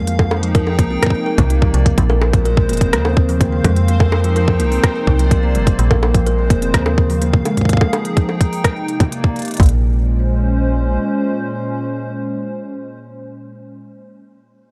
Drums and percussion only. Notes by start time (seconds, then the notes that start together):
0.07 closed hi-hat
0.19 kick, high bongo
0.31 high bongo
0.43 closed hi-hat
0.55 kick, closed hi-hat
0.67 high bongo
0.79 kick, closed hi-hat
1.02 kick, cross-stick, closed hi-hat
1.06 kick
1.10 kick
1.38 kick, closed hi-hat, low conga
1.50 closed hi-hat
1.62 kick
1.74 closed hi-hat
1.86 kick, closed hi-hat
1.98 kick, closed hi-hat
2.10 high bongo
2.22 high bongo
2.33 kick, closed hi-hat
2.45 closed hi-hat
2.57 kick
2.69 closed hi-hat
2.73 closed hi-hat
2.77 kick, closed hi-hat
2.81 closed hi-hat
2.93 cross-stick, closed hi-hat
3.05 high bongo
3.17 kick
3.29 open hi-hat
3.41 kick, closed hi-hat
3.64 kick, closed hi-hat, high bongo
3.76 closed hi-hat
3.88 closed hi-hat
4.00 kick, high bongo
4.12 high bongo
4.24 closed hi-hat
4.36 closed hi-hat
4.48 kick, high bongo
4.60 closed hi-hat
4.72 open hi-hat
4.84 kick, cross-stick, closed hi-hat
5.07 kick
5.19 closed hi-hat
5.31 kick, closed hi-hat
5.55 closed hi-hat
5.67 kick, closed hi-hat
5.79 closed hi-hat
5.91 kick, high bongo
6.03 high bongo
6.14 kick, closed hi-hat
6.27 closed hi-hat
6.50 kick, closed hi-hat
6.62 closed hi-hat
6.74 kick, cross-stick, closed hi-hat
6.86 high bongo
6.98 kick
7.10 open hi-hat
7.22 closed hi-hat
7.34 kick
7.45 closed hi-hat, high bongo
7.57 kick, closed hi-hat
7.61 kick
7.65 kick
7.69 kick, closed hi-hat
7.73 kick
7.77 kick
7.81 kick, high bongo
7.93 closed hi-hat, high bongo
8.05 closed hi-hat
8.17 kick, closed hi-hat
8.29 high bongo
8.41 kick, closed hi-hat
8.53 open hi-hat
8.64 kick, cross-stick, closed hi-hat
8.88 closed hi-hat
9.00 kick, closed hi-hat, low conga
9.12 closed hi-hat
9.24 kick
9.36 closed hi-hat
9.39 closed hi-hat
9.42 closed hi-hat
9.45 closed hi-hat
9.48 closed hi-hat
9.51 closed hi-hat
9.54 closed hi-hat
9.57 kick, closed hi-hat
9.60 closed hi-hat
9.63 closed hi-hat
9.66 closed hi-hat
9.69 closed hi-hat